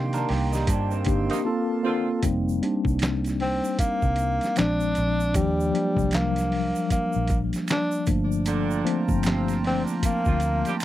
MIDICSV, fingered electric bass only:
0, 0, Header, 1, 3, 480
1, 0, Start_track
1, 0, Tempo, 779221
1, 1374, Time_signature, 4, 2, 24, 8
1, 6681, End_track
2, 0, Start_track
2, 0, Title_t, "Fingered electric bass"
2, 0, Program_c, 0, 33
2, 0, Note_on_c, 0, 48, 99
2, 151, Note_off_c, 0, 48, 0
2, 186, Note_on_c, 0, 36, 88
2, 398, Note_off_c, 0, 36, 0
2, 421, Note_on_c, 0, 43, 90
2, 635, Note_off_c, 0, 43, 0
2, 664, Note_on_c, 0, 31, 82
2, 792, Note_off_c, 0, 31, 0
2, 1380, Note_on_c, 0, 29, 107
2, 1595, Note_off_c, 0, 29, 0
2, 1759, Note_on_c, 0, 36, 83
2, 2215, Note_off_c, 0, 36, 0
2, 2485, Note_on_c, 0, 36, 85
2, 2701, Note_off_c, 0, 36, 0
2, 2828, Note_on_c, 0, 34, 82
2, 3039, Note_off_c, 0, 34, 0
2, 3068, Note_on_c, 0, 34, 83
2, 3279, Note_off_c, 0, 34, 0
2, 3299, Note_on_c, 0, 39, 113
2, 3515, Note_off_c, 0, 39, 0
2, 3683, Note_on_c, 0, 36, 89
2, 4137, Note_off_c, 0, 36, 0
2, 4411, Note_on_c, 0, 34, 89
2, 4624, Note_off_c, 0, 34, 0
2, 4980, Note_on_c, 0, 31, 93
2, 5432, Note_off_c, 0, 31, 0
2, 5603, Note_on_c, 0, 31, 88
2, 6057, Note_off_c, 0, 31, 0
2, 6329, Note_on_c, 0, 38, 94
2, 6543, Note_off_c, 0, 38, 0
2, 6681, End_track
3, 0, Start_track
3, 0, Title_t, "Muted fingered electric bass strokes"
3, 2340, Note_on_c, 9, 29, 45
3, 2401, Note_off_c, 9, 29, 0
3, 4260, Note_on_c, 9, 29, 44
3, 4321, Note_off_c, 9, 29, 0
3, 6184, Note_on_c, 9, 29, 47
3, 6245, Note_off_c, 9, 29, 0
3, 6681, End_track
0, 0, End_of_file